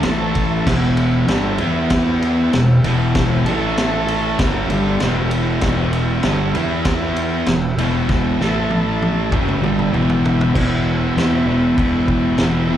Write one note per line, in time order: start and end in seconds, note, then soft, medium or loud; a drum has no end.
0.03 0.63 A1 loud
0.03 0.66 A2 loud
0.03 0.66 E3 loud
0.03 0.67 A3 loud
0.03 0.68 A4 medium
0.03 0.66 E5 medium
0.03 0.68 A5 medium
0.03 snare loud
0.03 ride loud
0.35 kick medium
0.35 ride medium
0.65 1.25 E1 medium
0.65 1.26 E2 medium
0.65 1.27 B2 loud
0.65 1.28 E3 loud
0.65 3.42 B4 medium
0.65 3.42 E5 medium
0.65 3.42 G5 medium
0.65 kick loud
0.65 snare loud
0.65 crash loud
0.97 ride medium
1.26 1.58 G1 loud
1.26 1.58 G2 loud
1.26 1.59 D3 loud
1.26 1.59 G3 loud
1.26 snare loud
1.26 ride loud
1.58 2.48 E2 medium
1.58 2.52 E3 medium
1.58 2.53 B3 medium
1.58 2.53 E4 loud
1.58 ride medium
1.90 kick loud
1.90 snare loud
1.90 ride loud
2.22 ride medium
2.53 2.83 E1 medium
2.53 2.78 E2 medium
2.53 2.78 B2 medium
2.53 snare loud
2.53 ride medium
2.83 3.42 E1 medium
2.83 3.45 E2 loud
2.83 3.46 B2 loud
2.83 3.46 E3 loud
2.83 ride medium
3.15 kick loud
3.15 snare loud
3.15 ride loud
3.45 4.34 A1 loud
3.45 4.38 A2 loud
3.45 4.38 E3 loud
3.45 4.39 A3 loud
3.45 4.39 A4 medium
3.45 4.38 E5 medium
3.45 4.39 A5 medium
3.45 ride medium
3.77 snare loud
3.77 ride loud
4.08 ride medium
4.37 4.68 F#1 medium
4.37 4.69 F#2 loud
4.37 4.70 C#3 loud
4.37 4.70 F#3 loud
4.37 8.35 B4 medium
4.37 8.36 E5 medium
4.37 8.35 G5 medium
4.37 kick loud
4.37 snare loud
4.37 ride loud
4.69 4.98 G1 medium
4.69 5.00 G2 medium
4.69 5.00 D3 medium
4.69 5.00 G3 loud
4.69 ride medium
5.00 5.59 E1 loud
5.00 5.61 E2 loud
5.00 5.61 B2 loud
5.00 5.62 E3 loud
5.00 snare loud
5.00 ride loud
5.31 ride medium
5.61 6.20 E1 loud
5.61 6.23 E2 loud
5.61 6.23 B2 loud
5.61 6.24 E3 loud
5.61 kick loud
5.61 snare loud
5.61 ride loud
5.93 ride medium
6.23 6.53 G1 loud
6.23 6.54 G2 loud
6.23 6.54 D3 loud
6.23 6.55 G3 loud
6.23 snare loud
6.23 ride loud
6.54 7.43 E2 loud
6.54 7.46 E3 medium
6.54 7.47 B3 loud
6.54 7.47 E4 loud
6.54 ride medium
6.85 kick loud
6.85 snare loud
6.85 ride loud
7.16 ride medium
7.46 7.76 E1 medium
7.46 7.72 E2 medium
7.46 7.72 B2 medium
7.46 snare loud
7.46 ride medium
7.78 8.36 E1 loud
7.78 8.39 E2 loud
7.78 8.39 B2 loud
7.78 8.39 E3 loud
7.78 ride medium
8.09 kick loud
8.09 snare medium
8.39 9.28 A1 loud
8.39 9.31 A2 loud
8.39 9.31 E3 loud
8.39 9.31 A3 loud
8.39 9.32 A4 medium
8.39 9.31 E5 medium
8.39 9.32 A5 medium
8.39 snare medium
8.71 high tom medium
9.02 high tom medium
9.31 9.60 F#1 medium
9.31 9.61 F#2 medium
9.31 9.62 C#3 loud
9.31 9.62 F#3 loud
9.31 10.52 B4 medium
9.31 10.52 E5 medium
9.31 10.52 G5 medium
9.31 kick loud
9.31 mid tom medium
9.48 mid tom medium
9.62 9.91 G1 loud
9.62 9.92 G2 medium
9.62 9.92 D3 loud
9.62 9.93 G3 loud
9.62 mid tom medium
9.79 mid tom medium
9.92 10.51 E1 loud
9.92 10.53 E2 loud
9.92 10.54 B2 loud
9.92 10.54 E3 loud
9.92 mid tom medium
10.10 floor tom loud
10.25 floor tom loud
10.41 floor tom loud
10.53 11.10 E1 loud
10.53 11.17 E2 loud
10.53 11.16 B2 loud
10.53 11.17 E3 loud
10.53 12.77 B4 medium
10.53 12.77 E5 medium
10.53 12.77 G5 medium
10.53 kick loud
10.53 crash loud
10.53 crash medium
11.16 11.44 E2 medium
11.16 11.46 E2 medium
11.16 11.47 B2 medium
11.16 11.48 E3 loud
11.16 snare loud
11.16 crash medium
11.46 11.74 E1 medium
11.46 11.77 E2 medium
11.46 11.77 B2 loud
11.46 11.79 E3 medium
11.78 12.33 E1 medium
11.78 12.37 E2 medium
11.78 12.38 B2 loud
11.78 12.39 E3 loud
11.78 kick loud
11.78 crash medium
12.08 kick medium
12.38 12.77 E1 loud
12.38 12.67 E2 medium
12.38 12.68 B2 loud
12.38 12.70 E3 loud
12.38 snare loud
12.38 crash medium
12.69 12.77 E2 loud
12.69 12.77 B2 loud
12.69 12.77 E3 medium